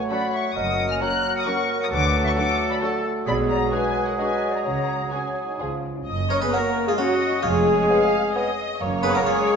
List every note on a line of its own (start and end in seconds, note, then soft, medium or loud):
0.00 0.56 F#3 medium
0.00 0.52 A3 medium
0.00 1.74 F#4 medium
0.00 0.52 C#5 medium
0.09 0.18 F#3 medium
0.09 0.18 C#4 medium
0.09 0.18 F#4 medium
0.09 0.18 A4 medium
0.09 0.32 D5 loud
0.09 0.55 F#5 medium
0.09 0.32 B5 loud
0.32 0.55 E5 medium
0.32 0.56 C#6 medium
0.55 0.93 F#1 medium
0.55 0.94 F#2 medium
0.55 3.11 F#3 medium
0.55 1.74 A#3 medium
0.55 1.87 A#4 medium
0.55 1.03 D#5 medium
0.55 0.89 F#5 medium
0.55 0.90 D#6 loud
0.90 1.03 G#5 medium
0.90 0.95 F6 loud
1.01 1.09 F#3 medium
1.01 1.09 C#4 medium
1.01 1.09 F#4 medium
1.01 1.10 A#4 medium
1.01 1.46 C#5 medium
1.01 1.35 A#5 medium
1.01 1.34 F#6 loud
1.35 1.40 F#5 medium
1.35 1.47 D#6 loud
1.45 1.54 F#3 medium
1.45 1.54 C#4 medium
1.45 1.55 F#4 medium
1.45 1.90 A#4 medium
1.45 1.55 A#4 medium
1.45 1.78 F#5 medium
1.45 1.81 C#6 loud
1.79 1.90 F#5 medium
1.79 1.86 D#6 loud
1.91 2.29 D2 medium
1.91 2.29 D3 medium
1.91 3.24 A3 medium
1.91 4.62 F#4 medium
1.91 3.09 A4 medium
1.91 2.54 B4 medium
1.91 2.23 F#5 loud
1.91 2.25 D6 loud
2.24 2.29 E5 loud
2.24 2.31 C#6 loud
2.36 2.45 F#3 medium
2.36 2.46 D4 medium
2.36 2.44 F#4 medium
2.36 2.44 A4 medium
2.36 2.73 F#5 loud
2.36 2.70 D6 loud
2.71 2.82 D5 medium
2.71 2.76 B5 loud
2.82 2.90 F#3 medium
2.82 2.90 D4 medium
2.82 2.90 F#4 medium
2.82 3.24 A4 loud
2.82 2.90 A4 medium
2.82 3.04 D5 medium
2.82 3.04 A5 medium
3.26 3.65 B1 loud
3.26 3.65 B2 loud
3.26 5.62 F#3 medium
3.26 5.05 G#3 loud
3.26 5.79 G#4 medium
3.26 3.72 G#4 medium
3.26 3.34 D5 loud
3.26 3.35 B5 loud
3.49 3.56 D5 loud
3.49 3.72 A#5 loud
3.71 3.80 G#3 medium
3.71 3.80 D4 medium
3.71 3.79 F#4 medium
3.71 3.79 G#4 medium
3.71 4.18 B4 medium
3.71 4.06 B4 medium
3.71 4.06 G#5 loud
4.07 4.18 A#4 medium
4.07 4.19 F#5 medium
4.18 4.26 G#3 medium
4.18 4.26 D4 medium
4.18 4.27 F#4 medium
4.18 4.26 G#4 medium
4.18 4.53 B4 medium
4.18 4.67 D#5 medium
4.18 4.53 G#5 loud
4.51 4.64 D5 medium
4.51 4.65 A#5 medium
4.64 5.05 C#2 medium
4.64 5.05 C#3 medium
4.64 5.08 F#4 medium
4.64 5.11 C#5 loud
4.64 5.83 C#5 medium
4.64 5.12 A#5 loud
5.11 5.21 G#3 medium
5.11 5.21 C#4 medium
5.11 5.27 C#4 medium
5.11 5.20 F#4 medium
5.11 5.19 G#4 medium
5.11 5.59 C#5 medium
5.11 5.60 G#5 medium
5.44 5.60 D#4 medium
5.59 5.99 C#2 medium
5.59 5.99 C#3 medium
5.59 5.84 F3 medium
5.59 5.69 G#3 medium
5.59 5.69 C#4 soft
5.59 5.67 F4 medium
5.59 5.95 F4 medium
5.59 5.67 G#4 medium
5.98 6.08 C#4 medium
6.07 6.45 F#1 medium
6.07 6.45 F#2 medium
6.07 6.50 D#5 medium
6.30 6.42 C#4 medium
6.30 6.41 A#4 medium
6.30 6.35 C#5 medium
6.30 6.41 C#6 medium
6.41 6.53 B3 medium
6.41 6.52 G#4 medium
6.41 6.46 B4 medium
6.41 6.53 B4 medium
6.41 6.47 B5 medium
6.52 6.69 F#3 medium
6.52 6.88 A#3 medium
6.52 6.85 F#4 medium
6.52 6.86 A#4 medium
6.52 6.87 A#4 loud
6.52 6.61 C#5 medium
6.52 6.99 C#5 medium
6.52 6.70 C#5 medium
6.52 6.86 A#5 medium
6.87 6.99 G#3 medium
6.87 6.99 F4 medium
6.87 6.92 G#4 medium
6.87 6.97 G#4 medium
6.87 6.93 G#5 medium
6.98 7.14 F#3 medium
6.98 7.45 F#3 medium
6.98 7.41 C#4 medium
6.98 7.45 F#4 medium
6.98 7.43 F#4 loud
6.98 7.06 C#5 medium
6.98 7.15 C#5 medium
6.98 7.43 D#5 medium
6.98 7.43 F#5 medium
7.43 7.82 F1 loud
7.43 7.82 F2 loud
7.43 8.58 G#3 loud
7.43 8.53 F4 medium
7.43 8.57 G#4 medium
7.43 8.55 G#4 loud
7.43 7.90 C#5 medium
7.43 8.56 G#5 loud
7.89 8.06 B3 medium
7.89 8.05 C#5 medium
7.89 7.97 C#5 medium
7.89 8.36 F5 loud
8.34 8.52 B3 medium
8.34 8.42 C#5 medium
8.34 8.51 C#5 medium
8.34 8.80 D#5 loud
8.79 9.19 F#1 loud
8.79 9.19 F#2 loud
8.79 9.56 A#3 medium
8.79 9.56 C#5 medium
8.79 9.56 C#5 loud
9.02 9.08 B3 medium
9.02 9.14 G#4 loud
9.02 9.08 B4 loud
9.02 9.14 B4 loud
9.02 9.14 B5 loud
9.14 9.20 A#3 medium
9.14 9.26 F#4 medium
9.14 9.20 A#4 medium
9.14 9.26 A#4 medium
9.14 9.21 A#5 medium
9.26 9.56 G#3 loud
9.26 9.56 F4 medium
9.26 9.56 G#4 loud
9.26 9.56 G#4 medium
9.26 9.34 C#5 medium
9.26 9.56 G#5 medium